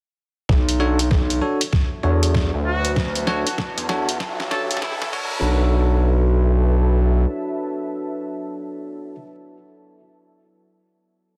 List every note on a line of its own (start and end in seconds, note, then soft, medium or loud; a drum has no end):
0.49 1.09 B1 medium
0.49 5.13 F#4 medium
0.49 kick medium
0.49 snare soft
0.49 riser medium
0.60 5.13 B4 medium
0.65 5.14 E5 medium
0.65 closed hi-hat medium
0.80 0.99 D4 medium
0.80 0.99 F#4 medium
0.80 0.99 A4 medium
0.80 0.99 C#5 loud
0.99 closed hi-hat medium
1.11 1.40 B1 medium
1.11 kick loud
1.11 snare soft
1.30 closed hi-hat medium
1.42 1.61 D4 medium
1.42 1.61 F#4 medium
1.42 1.61 A4 medium
1.42 1.61 C#5 medium
1.61 5.14 A5 medium
1.61 closed hi-hat medium
1.73 kick medium
1.73 snare medium
2.03 2.51 E2 medium
2.03 3.25 D4 medium
2.03 3.25 F#4 medium
2.03 3.25 A4 medium
2.03 3.25 C#5 medium
2.23 closed hi-hat medium
2.35 kick medium
2.35 snare medium
2.54 3.44 D2 loud
2.66 2.91 F#4 medium
2.85 closed hi-hat medium
2.96 kick loud
2.96 snare medium
3.15 closed hi-hat medium
3.27 3.46 D4 loud
3.27 3.46 F#4 medium
3.27 3.40 F#4 medium
3.27 3.46 A4 medium
3.27 3.46 C#5 loud
3.27 snare medium
3.47 3.54 F#4 medium
3.47 closed hi-hat medium
3.58 kick loud
3.58 snare medium
3.77 4.18 E2 loud
3.77 closed hi-hat medium
3.89 4.08 D4 medium
3.89 4.08 F#4 medium
3.89 4.08 A4 medium
3.89 4.08 C#5 medium
3.89 snare medium
4.09 closed hi-hat medium
4.20 4.80 B1 medium
4.20 kick medium
4.20 snare medium
4.40 snare medium
4.51 5.12 D4 medium
4.51 5.12 F#4 medium
4.51 5.12 A4 medium
4.51 4.64 A4 loud
4.51 5.12 C#5 medium
4.51 snare medium
4.70 4.78 A4 medium
4.70 closed hi-hat medium
4.77 snare medium
4.82 5.12 B1 medium
4.82 4.95 E4 medium
4.82 kick loud
4.82 snare loud
5.02 5.09 E4 medium
5.02 snare medium
5.13 7.26 B1 medium
5.13 9.15 D4 medium
5.13 9.15 F#4 medium
5.13 8.68 F#4 medium
5.13 9.15 A4 medium
5.13 9.15 C#5 medium
5.13 kick loud
5.13 crash medium
5.25 8.68 B4 medium
5.66 8.68 E5 medium
5.72 8.67 A5 medium